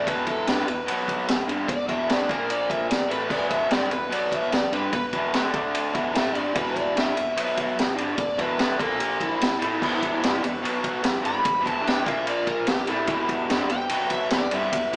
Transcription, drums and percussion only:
0.07 kick, ride
0.27 kick, ride
0.47 snare, ride
0.59 snare
0.68 ride
0.88 ride
1.08 kick, ride
1.28 snare, ride
1.49 ride
1.68 kick, ride
1.89 kick, ride
2.09 snare, ride
2.29 kick, ride
2.50 ride
2.70 kick, ride
2.91 snare, ride
3.11 ride
3.30 kick, crash
3.50 kick, ride
3.71 snare, ride
3.91 ride
4.12 ride
4.32 kick, ride
4.52 snare, ride
4.73 ride
4.93 kick, ride
5.13 kick, ride
5.34 snare, ride
5.54 kick, ride
5.75 ride
5.95 kick, ride
6.15 snare, ride
6.35 ride
6.55 kick, ride
6.76 kick, ride
6.97 snare, ride
7.07 snare
7.17 ride
7.37 ride
7.57 kick, ride
7.79 snare, ride
7.98 ride
8.18 kick, ride
8.39 kick, ride
8.59 snare, ride
8.79 kick, ride
9.00 ride
9.20 kick, ride
9.41 snare, ride
9.62 ride
9.82 kick, crash
10.03 kick, ride
10.23 snare, ride
10.35 snare
10.44 ride
10.65 ride
10.84 kick, ride
11.04 snare, ride
11.25 ride
11.45 kick, ride
11.66 kick, ride
11.87 snare, ride
12.06 kick, ride
12.27 ride
12.47 kick, ride
12.67 snare, ride
12.87 ride
13.07 kick, ride
13.29 kick, ride
13.50 snare, ride
13.70 ride
13.89 ride
14.10 kick, ride
14.30 snare, ride
14.51 ride
14.73 kick, ride

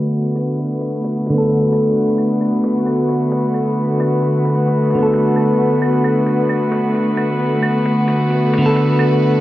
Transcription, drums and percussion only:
0.35 closed hi-hat, claves
0.59 closed hi-hat
0.81 closed hi-hat
1.04 closed hi-hat
1.27 closed hi-hat
1.49 closed hi-hat
1.72 closed hi-hat, claves
2.18 closed hi-hat, claves
2.41 closed hi-hat, claves
2.64 closed hi-hat
2.86 closed hi-hat, claves
3.09 closed hi-hat
3.32 closed hi-hat
3.54 closed hi-hat, claves
4.00 closed hi-hat, claves
4.22 closed hi-hat
4.45 closed hi-hat
4.68 closed hi-hat
4.90 closed hi-hat
5.13 closed hi-hat
5.36 closed hi-hat, claves
5.82 closed hi-hat, claves
6.04 closed hi-hat, claves
6.26 closed hi-hat
6.49 closed hi-hat, claves
6.72 closed hi-hat
6.95 closed hi-hat
7.17 closed hi-hat, claves
7.62 closed hi-hat, claves
7.85 closed hi-hat
8.08 closed hi-hat
8.30 closed hi-hat
8.54 closed hi-hat
8.76 closed hi-hat
8.99 closed hi-hat, claves

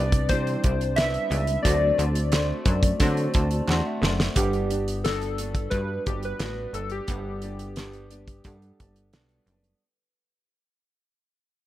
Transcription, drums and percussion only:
0.12 kick, closed hi-hat
0.29 kick, closed hi-hat
0.47 closed hi-hat
0.64 kick, closed hi-hat
0.81 closed hi-hat
0.97 snare, clap, closed hi-hat
1.14 closed hi-hat
1.31 closed hi-hat
1.47 closed hi-hat
1.65 kick, closed hi-hat
1.99 closed hi-hat
2.15 closed hi-hat
2.32 snare, clap, closed hi-hat
2.65 kick, closed hi-hat
2.83 kick, closed hi-hat
3.00 kick, closed hi-hat
3.17 closed hi-hat
3.34 kick, closed hi-hat
3.51 closed hi-hat
3.68 snare, clap
4.03 snare
4.20 snare
4.36 kick, closed hi-hat
4.53 closed hi-hat
4.70 closed hi-hat
4.88 closed hi-hat
5.05 snare, closed hi-hat
5.22 closed hi-hat
5.38 closed hi-hat
5.55 kick, closed hi-hat
5.71 kick, closed hi-hat
6.06 kick, closed hi-hat
6.23 closed hi-hat
6.39 snare, closed hi-hat
6.74 closed hi-hat
6.90 closed hi-hat
7.08 kick, closed hi-hat
7.42 closed hi-hat
7.59 closed hi-hat
7.76 snare, closed hi-hat
7.93 closed hi-hat
8.11 closed hi-hat
8.28 kick, closed hi-hat
8.44 kick, closed hi-hat
8.62 closed hi-hat
8.80 kick, closed hi-hat
8.96 closed hi-hat
9.13 snare, closed hi-hat
9.29 closed hi-hat
9.47 closed hi-hat
9.64 closed hi-hat

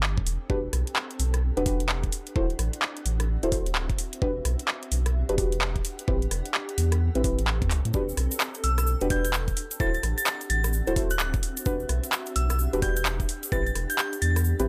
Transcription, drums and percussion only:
0.03 clap
0.18 kick
0.27 open hi-hat
0.50 kick
0.73 cross-stick, open hi-hat
0.87 closed hi-hat
0.96 clap
1.11 closed hi-hat
1.20 open hi-hat
1.34 cross-stick, closed hi-hat
1.57 closed hi-hat
1.66 kick, open hi-hat
1.80 closed hi-hat
1.89 clap
2.03 kick, closed hi-hat
2.12 open hi-hat
2.27 closed hi-hat
2.36 kick
2.50 closed hi-hat
2.59 cross-stick, open hi-hat
2.73 closed hi-hat
2.82 clap
2.97 closed hi-hat
3.06 open hi-hat
3.20 cross-stick, closed hi-hat
3.43 closed hi-hat
3.52 kick, open hi-hat
3.66 closed hi-hat
3.75 clap
3.90 kick, closed hi-hat
3.98 open hi-hat
4.13 closed hi-hat
4.22 kick
4.45 cross-stick, open hi-hat
4.59 closed hi-hat
4.68 clap
4.83 closed hi-hat
4.92 open hi-hat
5.06 cross-stick, closed hi-hat
5.29 closed hi-hat
5.38 kick, open hi-hat
5.52 closed hi-hat
5.61 clap
5.76 kick, closed hi-hat
5.85 open hi-hat
5.99 closed hi-hat
6.08 kick
6.22 closed hi-hat
6.31 cross-stick, open hi-hat
6.46 closed hi-hat
6.54 clap
6.69 closed hi-hat
6.78 open hi-hat
6.92 cross-stick, closed hi-hat
7.15 closed hi-hat
7.24 kick, open hi-hat
7.39 closed hi-hat
7.48 clap
7.62 kick, closed hi-hat
7.71 clap, open hi-hat
7.85 closed hi-hat
7.94 kick, cabasa
8.09 cabasa
8.17 cross-stick, open hi-hat
8.31 closed hi-hat, cabasa
8.40 clap, cabasa
8.54 closed hi-hat, cabasa
8.64 open hi-hat
8.78 cross-stick, closed hi-hat, cabasa
8.87 cabasa
9.01 closed hi-hat, cabasa
9.10 kick, open hi-hat
9.25 closed hi-hat, cabasa
9.33 clap, cabasa
9.48 kick, closed hi-hat, cabasa
9.57 open hi-hat
9.71 closed hi-hat, cabasa
9.80 kick, cabasa
9.94 closed hi-hat, cabasa
10.03 cross-stick, open hi-hat
10.18 closed hi-hat, cabasa
10.25 clap, cabasa
10.41 closed hi-hat, cabasa
10.50 open hi-hat
10.64 cross-stick, closed hi-hat, cabasa
10.73 cabasa
10.87 closed hi-hat, cabasa
10.96 kick, open hi-hat
11.10 closed hi-hat, cabasa
11.19 clap, cabasa
11.34 kick, closed hi-hat, cabasa
11.43 open hi-hat
11.57 closed hi-hat, cabasa
11.66 kick, cabasa
11.80 cabasa
11.89 cross-stick, open hi-hat
12.04 closed hi-hat, cabasa
12.12 clap, cabasa
12.26 closed hi-hat, cabasa
12.36 open hi-hat
12.50 cross-stick, closed hi-hat, cabasa
12.59 cabasa
12.73 closed hi-hat, cabasa
12.82 kick, open hi-hat
12.96 closed hi-hat, cabasa
13.05 clap, cabasa
13.20 kick, closed hi-hat, cabasa
13.29 open hi-hat
13.43 closed hi-hat, cabasa
13.52 kick, cabasa
13.66 closed hi-hat, cabasa
13.75 cross-stick, open hi-hat
13.90 closed hi-hat, cabasa
13.98 clap, cabasa
14.13 closed hi-hat, cabasa
14.22 open hi-hat
14.36 cross-stick, closed hi-hat, cabasa
14.44 cabasa
14.59 closed hi-hat, cabasa

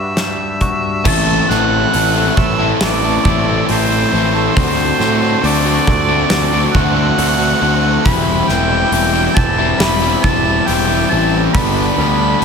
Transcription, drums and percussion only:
0.17 snare, closed hi-hat
0.61 kick, closed hi-hat
1.05 kick, crash
1.50 snare
1.94 open hi-hat
2.37 kick
2.81 snare, open hi-hat
3.25 kick
3.69 open hi-hat
4.57 kick, open hi-hat
5.00 snare
5.44 open hi-hat
5.87 kick
6.30 snare, open hi-hat
6.75 kick
7.19 open hi-hat
8.05 kick, open hi-hat
8.49 snare
8.92 open hi-hat
9.37 kick
9.80 snare, open hi-hat
10.24 kick
10.68 open hi-hat
11.55 kick, open hi-hat

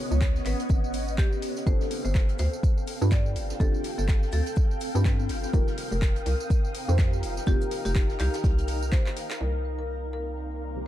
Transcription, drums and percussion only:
0.12 tambourine
0.21 kick, snare, clap, tambourine, shaker
0.36 snare, tambourine
0.46 clap, open hi-hat, shaker
0.59 closed hi-hat, tambourine
0.69 kick, tambourine, shaker
0.84 tambourine
0.93 open hi-hat, shaker
1.08 tambourine
1.18 kick, snare, clap, tambourine, shaker
1.32 tambourine
1.42 snare, open hi-hat, shaker
1.56 snare, tambourine
1.67 kick, tambourine, shaker
1.81 snare, tambourine
1.90 snare, open hi-hat, shaker
2.05 tambourine
2.15 kick, snare, clap, tambourine, shaker
2.29 closed hi-hat, tambourine
2.39 snare, open hi-hat, shaker
2.53 tambourine
2.63 kick, tambourine, shaker
2.78 tambourine
2.87 open hi-hat, shaker
3.02 tambourine
3.11 kick, snare, clap, tambourine, shaker
3.26 tambourine
3.36 open hi-hat, shaker
3.50 snare, tambourine
3.60 kick, tambourine, shaker
3.74 tambourine
3.84 snare, open hi-hat, shaker
3.99 tambourine
4.08 kick, snare, clap, tambourine, shaker
4.23 snare, tambourine
4.32 open hi-hat, shaker
4.46 closed hi-hat, tambourine
4.56 kick, tambourine, shaker
4.71 tambourine
4.80 open hi-hat, shaker
4.95 tambourine
5.05 kick, snare, clap, tambourine, shaker
5.19 tambourine
5.29 snare, open hi-hat, shaker
5.43 snare, tambourine
5.53 kick, tambourine, shaker
5.67 snare, tambourine
5.78 snare, open hi-hat, shaker
5.92 tambourine
6.02 kick, snare, clap, tambourine, shaker
6.16 closed hi-hat, tambourine
6.26 snare, open hi-hat, shaker
6.40 tambourine
6.50 kick, tambourine, shaker
6.65 tambourine
6.75 open hi-hat, shaker
6.89 tambourine
6.98 kick, snare, clap, tambourine, shaker
7.13 tambourine
7.23 open hi-hat, shaker
7.37 snare, tambourine
7.46 kick, snare, tambourine, shaker
7.61 tambourine, shaker
7.71 snare, open hi-hat
7.85 snare, open hi-hat, tambourine, shaker
7.95 kick, clap, tambourine, shaker
8.09 snare, tambourine
8.19 snare, clap, open hi-hat, shaker
8.34 snare, tambourine, shaker
8.44 kick, snare, tambourine, shaker
8.58 closed hi-hat, tambourine
8.68 snare, open hi-hat, shaker
8.82 tambourine
8.92 kick, snare, clap, tambourine, shaker
9.06 clap, tambourine
9.16 snare, open hi-hat, shaker
9.30 snare, clap, tambourine, shaker

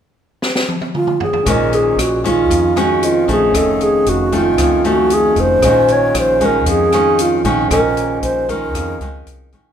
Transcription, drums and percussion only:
0.42 snare
0.55 snare
0.68 high tom
0.81 high tom
0.95 mid tom
1.07 mid tom
1.20 floor tom
1.33 floor tom
1.46 kick, cross-stick, closed hi-hat
1.73 closed hi-hat
1.99 cross-stick, closed hi-hat
2.25 kick, closed hi-hat
2.51 kick, closed hi-hat
2.77 cross-stick, closed hi-hat
3.03 closed hi-hat
3.28 kick, closed hi-hat
3.54 kick, cross-stick, closed hi-hat
3.81 closed hi-hat
4.06 closed hi-hat
4.32 kick, closed hi-hat
4.58 kick, cross-stick, closed hi-hat
4.85 closed hi-hat
5.10 closed hi-hat
5.36 kick, closed hi-hat
5.62 kick, cross-stick, closed hi-hat
5.88 closed hi-hat
6.15 cross-stick, closed hi-hat
6.41 kick, closed hi-hat
6.66 kick, closed hi-hat
6.92 cross-stick, closed hi-hat
7.19 closed hi-hat
7.45 kick, closed hi-hat
7.71 kick, cross-stick, closed hi-hat
7.97 closed hi-hat
8.23 closed hi-hat
8.49 kick, closed hi-hat
8.75 kick, cross-stick, closed hi-hat
9.01 closed hi-hat
9.27 closed hi-hat
9.52 kick, closed hi-hat

